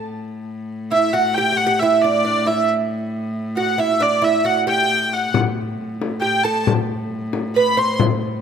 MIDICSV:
0, 0, Header, 1, 5, 480
1, 0, Start_track
1, 0, Tempo, 442478
1, 37, Time_signature, 6, 3, 24, 8
1, 9128, End_track
2, 0, Start_track
2, 0, Title_t, "Hurdy-gurdy"
2, 0, Program_c, 0, 110
2, 1001, Note_on_c, 0, 76, 83
2, 1226, Note_off_c, 0, 76, 0
2, 1226, Note_on_c, 0, 78, 87
2, 1460, Note_on_c, 0, 79, 96
2, 1473, Note_off_c, 0, 78, 0
2, 1705, Note_on_c, 0, 78, 84
2, 1710, Note_off_c, 0, 79, 0
2, 1947, Note_on_c, 0, 76, 73
2, 1952, Note_off_c, 0, 78, 0
2, 2193, Note_off_c, 0, 76, 0
2, 2193, Note_on_c, 0, 74, 81
2, 2683, Note_off_c, 0, 74, 0
2, 2683, Note_on_c, 0, 76, 69
2, 2921, Note_off_c, 0, 76, 0
2, 3875, Note_on_c, 0, 78, 81
2, 4119, Note_off_c, 0, 78, 0
2, 4119, Note_on_c, 0, 76, 74
2, 4367, Note_off_c, 0, 76, 0
2, 4367, Note_on_c, 0, 74, 79
2, 4602, Note_on_c, 0, 76, 75
2, 4603, Note_off_c, 0, 74, 0
2, 4839, Note_off_c, 0, 76, 0
2, 4839, Note_on_c, 0, 78, 78
2, 4947, Note_off_c, 0, 78, 0
2, 5086, Note_on_c, 0, 79, 97
2, 5573, Note_off_c, 0, 79, 0
2, 5573, Note_on_c, 0, 78, 79
2, 5806, Note_off_c, 0, 78, 0
2, 6741, Note_on_c, 0, 79, 78
2, 6983, Note_off_c, 0, 79, 0
2, 6983, Note_on_c, 0, 81, 89
2, 7230, Note_off_c, 0, 81, 0
2, 8200, Note_on_c, 0, 83, 80
2, 8446, Note_off_c, 0, 83, 0
2, 8446, Note_on_c, 0, 84, 89
2, 8664, Note_off_c, 0, 84, 0
2, 9128, End_track
3, 0, Start_track
3, 0, Title_t, "Oud"
3, 0, Program_c, 1, 24
3, 992, Note_on_c, 1, 64, 72
3, 1227, Note_off_c, 1, 64, 0
3, 1232, Note_on_c, 1, 66, 79
3, 1483, Note_off_c, 1, 66, 0
3, 1494, Note_on_c, 1, 67, 84
3, 1639, Note_off_c, 1, 67, 0
3, 1652, Note_on_c, 1, 67, 69
3, 1794, Note_off_c, 1, 67, 0
3, 1807, Note_on_c, 1, 67, 84
3, 1968, Note_off_c, 1, 67, 0
3, 1979, Note_on_c, 1, 64, 77
3, 2215, Note_on_c, 1, 62, 67
3, 2216, Note_off_c, 1, 64, 0
3, 2423, Note_off_c, 1, 62, 0
3, 2436, Note_on_c, 1, 62, 67
3, 2672, Note_on_c, 1, 64, 63
3, 2685, Note_off_c, 1, 62, 0
3, 2899, Note_off_c, 1, 64, 0
3, 3873, Note_on_c, 1, 66, 76
3, 4098, Note_off_c, 1, 66, 0
3, 4102, Note_on_c, 1, 64, 72
3, 4344, Note_on_c, 1, 62, 68
3, 4358, Note_off_c, 1, 64, 0
3, 4575, Note_on_c, 1, 64, 70
3, 4599, Note_off_c, 1, 62, 0
3, 4810, Note_off_c, 1, 64, 0
3, 4824, Note_on_c, 1, 66, 77
3, 5054, Note_off_c, 1, 66, 0
3, 5065, Note_on_c, 1, 67, 77
3, 5749, Note_off_c, 1, 67, 0
3, 6746, Note_on_c, 1, 67, 65
3, 6989, Note_off_c, 1, 67, 0
3, 6993, Note_on_c, 1, 69, 82
3, 7218, Note_off_c, 1, 69, 0
3, 8204, Note_on_c, 1, 71, 69
3, 8426, Note_off_c, 1, 71, 0
3, 8431, Note_on_c, 1, 72, 83
3, 8656, Note_off_c, 1, 72, 0
3, 9128, End_track
4, 0, Start_track
4, 0, Title_t, "Viola da gamba"
4, 0, Program_c, 2, 42
4, 30, Note_on_c, 2, 45, 64
4, 5789, Note_off_c, 2, 45, 0
4, 5796, Note_on_c, 2, 45, 61
4, 9128, Note_off_c, 2, 45, 0
4, 9128, End_track
5, 0, Start_track
5, 0, Title_t, "Frame drum"
5, 5796, Note_on_c, 9, 64, 78
5, 5905, Note_off_c, 9, 64, 0
5, 6525, Note_on_c, 9, 64, 64
5, 6634, Note_off_c, 9, 64, 0
5, 7238, Note_on_c, 9, 64, 77
5, 7346, Note_off_c, 9, 64, 0
5, 7953, Note_on_c, 9, 64, 69
5, 8061, Note_off_c, 9, 64, 0
5, 8673, Note_on_c, 9, 64, 88
5, 8781, Note_off_c, 9, 64, 0
5, 9128, End_track
0, 0, End_of_file